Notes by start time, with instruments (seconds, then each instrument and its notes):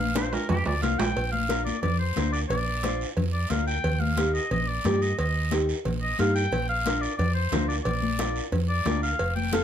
Already playing: fingered electric bass A#1, oboe F5
0.15 nylon-string guitar D4 F4 A#4, oboe C5, cowbell, high conga, high timbale, short guiro
0.33 oboe A#4, low timbale, short guiro
0.49 fingered electric bass F2, oboe G4, cowbell, high conga, low conga, low timbale, long guiro
0.66 fingered electric bass D2, oboe D5, low timbale
0.82 fingered electric bass C2, nylon-string guitar D4 F4 A#4, oboe F5, cowbell, high conga, short guiro
0.99 fingered electric bass A#1, oboe G5, low timbale, short guiro
1.16 fingered electric bass A#1, cowbell, high conga, long guiro
1.32 oboe F5, high conga
1.48 nylon-string guitar D4 F4 A#4, cowbell, high conga, short guiro
1.65 oboe D5, high conga, short guiro
1.82 fingered electric bass F2, oboe D5, cowbell, high conga, low conga, long guiro
1.99 oboe C5
2.16 fingered electric bass D2, nylon-string guitar D4 F4 A#4, cowbell, high conga, short guiro
2.32 oboe D5, short guiro
2.49 fingered electric bass A#1, oboe D5, cowbell, high conga, low conga, long guiro
2.83 nylon-string guitar D4 F4 C5, cowbell, high conga, short guiro
3.01 short guiro
3.17 fingered electric bass F2, cowbell, high conga, low conga, long guiro
3.33 oboe D5
3.50 fingered electric bass D2, nylon-string guitar D4 F4 A#4, oboe F5, cowbell, high conga, short guiro
3.67 oboe G5, short guiro
3.84 fingered electric bass D#2, cowbell, high conga, low conga, long guiro
4.00 oboe F5, high conga
4.17 nylon-string guitar D#4 G4 A#4, cowbell, high conga, short guiro
4.34 oboe D#5, short guiro
4.51 fingered electric bass A#1, oboe D#5, cowbell, high conga, low conga, long guiro
4.67 oboe D5
4.85 fingered electric bass G2, nylon-string guitar D#4 G4 A#4, cowbell, high conga, low conga, low timbale, short guiro
5.01 oboe D#5, short guiro
5.18 fingered electric bass D#2, oboe D#5, cowbell, high conga, long guiro
5.51 nylon-string guitar D#4 G4 A#4, cowbell, high conga, short guiro
5.69 short guiro
5.85 fingered electric bass A#1, cowbell, high conga, low conga, long guiro
6.02 oboe D#5
6.19 fingered electric bass G2, nylon-string guitar D#4 G4 A#4, oboe F5, cowbell, high conga, short guiro
6.35 oboe G5, short guiro
6.52 fingered electric bass A#1, cowbell, high conga, low conga, long guiro
6.69 oboe F5
6.86 nylon-string guitar D4 F4 A#4, cowbell, high conga, short guiro
7.01 oboe D5, short guiro
7.17 fingered electric bass F2, oboe D5, cowbell, high conga, low conga, long guiro
7.34 oboe C5
7.52 fingered electric bass D2, nylon-string guitar D4 F4 A#4, cowbell, high conga, low conga, low timbale, short guiro
7.68 oboe D5, short guiro
7.84 fingered electric bass A#1, oboe D5, cowbell, high conga, low conga, long guiro
8.02 high conga
8.19 nylon-string guitar D4 F4 A#4, cowbell, high conga, short guiro
8.36 short guiro
8.52 fingered electric bass F2, cowbell, high conga, low conga, long guiro
8.69 oboe D5
8.85 fingered electric bass D2, nylon-string guitar D4 F4 A#4, cowbell, high conga, low timbale, short guiro
9.03 oboe F5, short guiro
9.19 fingered electric bass F1, cowbell, high conga, long guiro
9.36 oboe G5, high conga
9.52 nylon-string guitar C4 F4 A4, oboe F5, cowbell, high conga, short guiro